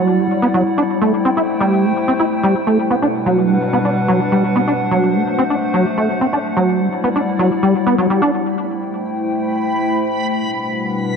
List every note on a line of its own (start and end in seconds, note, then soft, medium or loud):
0.00 0.20 F#3 medium
0.00 0.88 G3 medium
0.00 2.75 E4 medium
0.00 0.88 D5 medium
0.00 0.86 F#5 medium
0.19 0.27 G3 medium
0.42 0.47 B3 loud
0.54 0.63 F#3 loud
0.78 0.83 D4 loud
0.90 2.77 A3 medium
0.90 2.77 C5 medium
0.90 2.77 G5 medium
1.01 1.13 A3 medium
1.25 1.30 C4 medium
1.37 1.42 E4 medium
1.60 1.86 G3 medium
1.84 1.93 A3 medium
2.08 2.13 C4 medium
2.20 2.25 E4 medium
2.43 2.54 G3 loud
2.67 2.78 A3 medium
2.79 4.66 B2 medium
2.79 4.66 G3 medium
2.79 6.53 D4 medium
2.79 4.66 B4 medium
2.79 8.41 F#5 medium
2.90 2.96 B3 medium
3.02 3.07 D4 medium
3.26 3.51 F#3 medium
3.50 3.58 G3 medium
3.73 3.78 B3 loud
3.85 3.90 D4 medium
4.08 4.20 F#3 loud
4.32 4.43 G3 medium
4.56 4.61 B3 medium
4.67 6.55 A3 medium
4.67 4.73 D4 medium
4.67 6.54 C5 medium
4.91 5.16 F#3 medium
5.15 5.23 A3 medium
5.38 5.44 C4 loud
5.50 5.55 D4 medium
5.74 5.85 F#3 loud
5.97 6.09 A3 medium
6.21 6.26 C4 medium
6.33 6.38 D4 medium
6.56 6.82 F#3 medium
6.56 8.43 G3 medium
6.56 8.43 E4 medium
6.56 8.44 D5 medium
6.80 6.89 G3 medium
7.04 7.09 B3 loud
7.16 7.21 D4 medium
7.39 7.50 F#3 loud
7.63 7.74 G3 medium
7.86 7.95 B3 loud
7.98 8.07 F#3 medium
8.10 8.21 G3 medium
8.22 8.30 D4 loud
8.45 10.32 A3 medium
8.45 10.32 E4 medium
8.45 10.32 C5 medium
8.45 10.32 G5 medium
8.45 11.16 B5 medium
10.34 11.16 B2 medium
10.34 11.16 G3 medium
10.34 11.16 D4 medium
10.34 11.16 B4 medium
10.34 11.16 F#5 medium